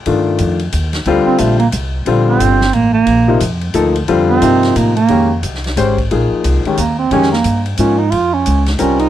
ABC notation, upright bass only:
X:1
M:3/4
L:1/8
Q:"Swing" 1/4=178
K:Bb
V:1 name="Upright bass" clef=bass
G,,2 F,,2 E,,2 | D,, z B,,,2 C,,2 | B,,,2 G,,,2 A,,,2 | B,,,2 F,,2 D,,2 |
F,,2 G,,2 A,,2 | [K:Bbdor] F,,2 C,,2 A,,,2 | B,,, z C,, z E,,2 | F,,2 G,,2 A,,2 |
F,,2 D,,2 C,,2 |]